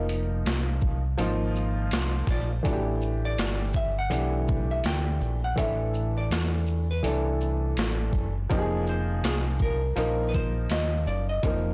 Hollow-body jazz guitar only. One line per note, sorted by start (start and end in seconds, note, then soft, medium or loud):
0.00 1.01 D#5 medium
2.31 2.52 D5 medium
2.52 3.25 C5 medium
3.25 3.77 D5 medium
3.76 3.98 E5 medium
3.99 4.67 F#5 loud
4.71 4.86 E5 medium
4.86 5.44 G5 loud
5.44 5.58 F#5 medium
5.59 6.13 E5 loud
6.17 6.32 D5 medium
6.32 6.90 C5 medium
6.91 8.11 B4 medium
8.89 9.22 C5 medium
9.26 9.35 G#4 medium
9.62 10.28 A#4 medium
10.29 10.34 B4 medium
10.34 10.68 C5 loud
10.71 11.05 D#5 loud
11.07 11.29 D5 medium
11.29 11.74 D#5 medium